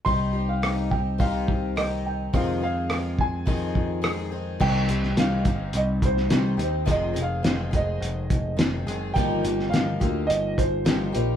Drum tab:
CC |----------------|----------------|x---------------|----------------|
HH |o---o---o---o---|o---o---o---o---|--x-x-x-x-x-x-x-|x-x-x-x-x-x-x-x-|
SD |----r-------r---|----r-------r---|---oo------oo---|----o-------o---|
BD |o-----o-o-o-----|o-----o-o-o-----|o-----o---o-----|o-----o---o-----|

CC |----------------|
HH |x-x-x-x-x-x-x-x-|
SD |---oo-------o---|
BD |o-----o---o-----|